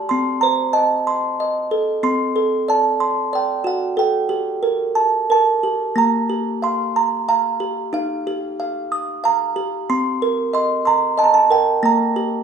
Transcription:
0.00 0.10 G4 medium
0.00 0.11 D5 medium
0.00 0.12 A5 medium
0.09 1.39 C4 medium
0.09 0.43 C6 medium
0.41 1.71 C5 medium
0.41 0.75 A#5 medium
0.73 1.39 D#5 medium
0.73 1.66 A5 medium
1.07 2.02 C6 medium
1.40 2.04 D#5 medium
1.71 2.03 A4 medium
2.03 3.33 C4 medium
2.03 2.70 C6 medium
2.36 3.65 A4 medium
2.68 3.32 D5 medium
2.68 3.29 A5 medium
3.00 3.98 C6 medium
3.33 3.98 D5 medium
3.33 3.67 G5 medium
3.64 3.97 F#4 medium
3.64 3.99 F#5 medium
3.97 5.31 A4 medium
3.97 5.28 G5 medium
4.29 5.62 G4 medium
4.63 5.29 A#4 medium
4.95 5.30 A5 medium
5.30 5.98 A#4 medium
5.30 6.01 A5 medium
5.63 5.98 G4 medium
5.96 7.28 A#3 medium
5.96 6.66 A#5 medium
6.29 7.59 G4 medium
6.62 7.27 F5 medium
6.62 7.31 C6 medium
6.96 7.27 A#5 medium
7.28 7.93 F5 medium
7.28 7.96 A#5 medium
7.60 7.94 G4 medium
7.93 9.23 D#4 medium
7.93 8.58 F5 medium
8.27 9.55 G4 medium
8.60 9.22 F5 medium
8.92 9.88 D#6 medium
9.24 9.88 F5 medium
9.24 9.91 A#5 medium
9.56 9.88 G4 medium
9.90 11.18 C4 medium
9.90 10.53 C6 medium
10.22 11.49 A#4 medium
10.53 11.16 D#5 medium
10.53 10.84 C6 medium
10.85 11.19 A#5 medium
10.85 11.82 C6 medium
11.17 11.82 D#5 medium
11.17 11.25 A5 medium
11.24 11.31 A#5 medium
11.34 11.51 A5 medium
11.51 11.83 A#4 medium
11.51 11.84 G5 medium
11.83 12.43 A#3 medium
11.83 12.43 A#5 medium
12.16 12.43 G4 medium

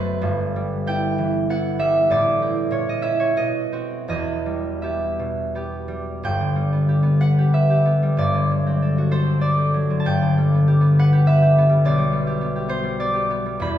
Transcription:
0.00 0.26 F#1 medium
0.00 0.26 F#2 medium
0.00 0.26 F#3 medium
0.00 0.26 A3 medium
0.00 0.86 B3 medium
0.00 0.26 F#4 medium
0.00 2.14 B4 medium
0.00 0.14 C5 loud
0.00 0.26 D#5 loud
0.21 2.13 G1 medium
0.21 2.13 G2 medium
0.56 1.78 G3 medium
0.87 1.48 B3 medium
0.87 1.50 E4 medium
0.87 2.13 G5 loud
1.18 2.13 E3 medium
1.50 2.13 B3 medium
1.50 2.41 E4 medium
1.50 2.02 F#5 loud
1.79 2.13 G3 medium
1.79 3.01 E5 loud
2.10 2.74 A1 medium
2.10 2.74 A2 medium
2.10 3.17 D5 loud
2.41 2.75 C4 soft
2.41 3.02 E4 medium
2.71 3.40 A#2 medium
2.71 3.19 C#5 medium
2.89 3.17 D#5 medium
3.02 3.40 C#4 soft
3.02 3.40 E4 medium
3.02 3.32 E5 medium
3.20 3.49 C#5 medium
3.36 4.12 B2 medium
3.36 4.08 D#5 medium
3.72 4.12 C4 medium
3.72 4.13 F#4 medium
4.08 6.28 E1 medium
4.08 6.28 E2 medium
4.08 6.28 D#5 medium
4.46 5.87 G3 soft
4.82 5.54 B3 soft
4.82 5.54 G4 medium
4.82 6.27 E5 medium
5.19 6.28 B2 soft
5.55 6.71 B3 soft
5.55 6.87 G4 medium
5.88 6.54 G3 medium
6.23 8.16 G1 medium
6.23 8.17 G2 medium
6.23 8.20 G5 loud
6.41 8.21 D3 medium
6.56 8.01 G3 soft
6.73 7.01 B3 soft
6.89 7.37 G4 medium
7.03 7.84 B3 medium
7.21 7.52 B4 medium
7.21 7.76 F#5 loud
7.38 7.69 G4 medium
7.53 8.21 B4 medium
7.53 8.62 E5 medium
7.70 8.21 G4 medium
7.86 8.21 B3 medium
8.02 8.21 G3 medium
8.17 10.04 G1 medium
8.17 10.04 G2 medium
8.17 9.40 D5 medium
8.34 9.89 D3 medium
8.51 9.73 F#3 medium
8.66 9.25 C4 medium
8.82 9.10 A4 soft
8.98 10.06 F#4 medium
9.11 9.41 A4 medium
9.11 10.05 C5 medium
9.26 9.57 C4 soft
9.41 10.06 A4 medium
9.41 11.84 D5 medium
9.58 10.06 C4 medium
9.74 10.06 F#3 medium
9.90 10.07 D3 medium
10.00 10.09 A5 medium
10.05 11.84 G1 medium
10.05 11.84 G2 medium
10.05 13.78 G5 loud
10.22 11.84 D3 medium
10.37 11.68 G3 medium
10.54 10.80 B3 soft
10.68 11.11 G4 medium
10.81 11.57 B3 medium
10.99 11.27 B4 medium
10.99 11.46 F#5 loud
11.13 11.41 G4 medium
11.27 13.78 B4 medium
11.27 12.24 E5 loud
11.42 12.26 G4 medium
11.58 12.11 B3 medium
11.69 11.97 G3 medium
11.85 13.68 B1 medium
11.85 13.68 B2 medium
11.85 12.98 D5 medium
11.98 12.82 G3 medium
12.12 12.40 B3 medium
12.27 12.54 G4 medium
12.41 12.68 B3 medium
12.56 13.12 G4 medium
12.68 12.99 B3 medium
12.68 13.21 C5 loud
12.83 13.44 G3 medium
13.00 13.29 B3 medium
13.00 13.66 D5 loud
13.13 13.78 G4 medium
13.30 13.78 B3 medium
13.46 13.78 G3 medium
13.60 13.78 E1 medium
13.60 13.78 E2 medium
13.60 13.78 B5 loud

